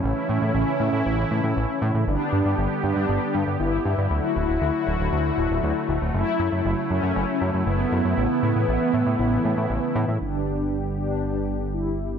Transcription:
Already playing: C#3 A3 C#4
0.04 A1 E3 E4
0.29 A2
0.42 A2
0.55 A1
0.80 A2
0.93 A2
1.06 A1
1.31 A2
1.44 A2
1.57 A1
1.82 A2
1.95 A2
2.07 G1 D3 G3 B3 D4 G4
2.33 G2
2.45 G2
2.58 G1
2.84 G2 D4
2.96 G2
3.09 G1
3.35 G2
3.47 G2
3.60 G1 E4
3.85 G2
3.98 G2
4.11 D2 D3 F#3 A3 F#4
4.36 D1
4.49 D1
4.62 D2
4.87 D1
5.00 D1
5.12 D2
5.38 D1
5.51 D1
5.63 D2
5.89 D1
6.02 D1
6.14 F#1 C#3 E4
6.40 F#2
6.52 F#2
6.65 F#1
6.90 F#2 C#4
7.03 F#2
7.16 F#1
7.41 F#2
7.54 F#2
7.67 F#1 B3
7.92 F#2
8.05 F#2
8.18 A1 E3
8.43 A2
8.56 A2
8.68 A1
8.94 A2
9.06 A2
9.19 A1
9.45 A2
9.57 A2
9.70 A1
9.95 A2
10.08 A2
10.21 G1 D3 G3 B3 D4 G4
10.97 D4
11.73 E4

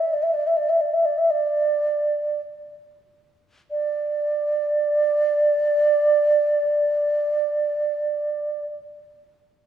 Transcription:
0.00 E5
0.13 D5
0.22 E5
0.34 D5
0.47 E5
0.57 D5
0.69 E5
0.80 D5
0.93 E5
1.05 D5
1.18 E5
1.30 D5
3.71 D5

